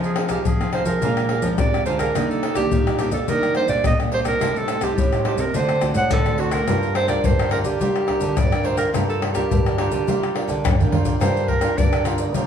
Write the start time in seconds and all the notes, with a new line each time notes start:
Already playing: F3 C4 D#4 G#4 C5 F5
0.04 G#4, pandeiro, maracas
0.15 C4 D#4 G#4 C5 F5, pandeiro, tamborim
0.28 D#4 G4 G#4 C5 F5, pandeiro, tamborim, maracas, surdo
0.45 C3 F3 G#4, pandeiro, maracas, surdo
0.60 C4 D#4 G#4 C5 F5, pandeiro, tamborim, maracas
0.72 D#4 G#4 C5 F5, pandeiro, tamborim
0.85 F3 G#4 A#4 C5 F5, pandeiro, maracas, surdo
1.02 A#2 F3 G#3 D4 G#4 A#4 D5 F5, pandeiro, maracas, surdo
1.17 pandeiro, tamborim, maracas
1.29 G#4 A#4 D5 F5, pandeiro, tamborim
1.42 F3 G#3 D4 A#4 D5 F5, pandeiro, maracas, surdo
1.58 F2 C3 D5, pandeiro, tamborim, maracas, surdo
1.74 A#4 D5 F5, pandeiro, tamborim, maracas
1.85 D3 F3 G#3 D4 G#4 A#4 C5 D5 F5, pandeiro, maracas
1.99 G#4 A#4 D5 F5, pandeiro, tamborim, maracas, surdo
2.15 D#3 G3 A#3 D4 G4 D5 D#5, pandeiro, tamborim, maracas, surdo
2.31 A4, pandeiro, maracas
2.42 D4 G4 D5 D#5, pandeiro, tamborim
2.55 G3 A#3 D4 G4 D5 D#5, pandeiro, tamborim, maracas, surdo
2.72 A#2 D#3, pandeiro, maracas, surdo
2.87 G4 D5 D#5, pandeiro, tamborim, maracas
2.98 G3 A#3 D4 G4 D5 D#5, pandeiro, tamborim, maracas
3.11 A#2 G4 A4 D5 D#5, pandeiro, maracas, surdo
3.28 D#3 G3 A#3 D4 G4 A#4 D5 D#5, pandeiro, maracas, surdo
3.43 pandeiro, tamborim, maracas
3.54 G3 A#3 D4 G4 C5 D5 D#5, pandeiro, tamborim
3.68 A#2 G4 D5 D#5, pandeiro, maracas, surdo
3.84 A#2 D#5, pandeiro, tamborim, maracas, surdo
4.00 G3 A#3 D4 G4 D5 D#5, pandeiro, tamborim, maracas
4.11 D4 G4 C5 D5 D#5, pandeiro
4.24 G3 C4 D4 D#4 G4 A#4 D5 D#5, pandeiro, tamborim, maracas, surdo
4.40 A2 G4 C5 D#5 A5, pandeiro, tamborim, maracas, surdo
4.56 G3 C4 D#4 A4, pandeiro, maracas
4.68 G4 C5 D#5 A5, pandeiro, tamborim, maracas
4.80 G3 C4 D#4 G4 C5 D#5 A5, pandeiro, tamborim, maracas, surdo
4.97 A2, pandeiro, maracas, surdo
5.13 C5 D#5 A5, pandeiro, tamborim, maracas
5.24 G3 C4 D#4 G4 C5 D#5 A5, pandeiro, tamborim
5.38 C3 A#4 C5 D#5 A5, pandeiro, maracas, surdo
5.54 D3 A3 C4 D4 F#4 C5 D5 F#5, pandeiro, maracas, surdo
5.69 pandeiro, tamborim, maracas
5.81 A3 C4 D4 F#4 C5 D5 F#5, pandeiro, tamborim, maracas, surdo
5.94 A2 C5 D5 F#5, pandeiro, maracas, surdo
6.11 A2 D3 A4, pandeiro, tamborim, maracas, surdo
6.25 A3 C4 F#4 C5 D5 F#5, pandeiro, tamborim, maracas
6.38 D4 F#4 C5 D5 F#5, pandeiro
6.51 D4 A#4 C5 D5 F#5, pandeiro, tamborim, maracas, surdo
6.67 G2 G3 D4 F4 A#4 D5 G5, pandeiro, tamborim, maracas, surdo
6.83 pandeiro, maracas
6.94 F4 A#4 C5 D5 G5, pandeiro, tamborim
7.07 D4 F4 A#4 D5 G5, pandeiro, tamborim, maracas, surdo
7.24 G2 D3 C5, pandeiro, maracas, surdo
7.38 A#4 D5 G5, pandeiro, tamborim, maracas
7.50 D4 F4 A#4 D5 G5, pandeiro, tamborim
7.63 D3 G4 A#4 D5 G5, pandeiro, maracas, surdo
7.80 G3 F4 A#4 D5 G5, pandeiro, maracas, surdo
7.96 pandeiro, tamborim, maracas
8.07 D4 F4 A#4 D5 G5, pandeiro, tamborim, surdo
8.19 D3 A#4 D5 G5, pandeiro, maracas, surdo
8.37 G2 D3 D5, pandeiro, tamborim, maracas, surdo
8.52 D4 F4 A#4 D5 G5, pandeiro, tamborim, maracas
8.63 F4 A#4 C5 D5 G5, pandeiro
8.77 F4 A#4 D5 G5, pandeiro, tamborim, maracas, surdo
8.94 G2 G3 D4 F4 A#4 D5 G5, pandeiro, tamborim, maracas, surdo
9.09 A4, pandeiro, maracas
9.22 F4 A#4 D5 G5, pandeiro, tamborim
9.34 D4 F4 G4 A#4 D5 G5, pandeiro, tamborim, maracas, surdo
9.51 G2 D3, pandeiro, maracas, surdo
9.66 A#4 D5 G5, pandeiro, tamborim, maracas
9.78 D4 F4 G4 A#4 D5 G5, pandeiro, tamborim
9.91 D3 A#4 D5 G5, pandeiro, maracas, surdo
10.07 G3 F4 A#4 D5 G5, pandeiro, maracas, surdo
10.23 pandeiro, tamborim, maracas
10.35 D4 F4 A#4 D5 G5, pandeiro, tamborim
10.48 D3 A#4 D5 G5, pandeiro, maracas, surdo
10.64 G2 D3, pandeiro, tamborim, maracas, surdo
10.80 D4 F4 A#4 D5 G5, surdo, pandeiro, maracas
10.92 F4 A#4 D5 G5, surdo, pandeiro
11.04 F4 A#4 D5 G5, pandeiro, maracas, surdo
11.20 G2 G3 D4 F4 A#4 C5 D5 G5, pandeiro, tamborim, maracas, surdo
11.37 pandeiro, maracas
11.47 F4 A#4 D5 G5, pandeiro, surdo
11.61 D4 F4 A#4 D5 G5, pandeiro, tamborim, maracas
11.78 G2 D3 D5, pandeiro, maracas, surdo
11.93 A#4 D5 G5, pandeiro, tamborim, maracas
12.04 D4 F4 A#4 D5 G5, pandeiro, tamborim, maracas
12.18 A#4 D5 G5, pandeiro, maracas
12.34 D3 G3 F4 A#4 D5 G5, pandeiro, maracas, surdo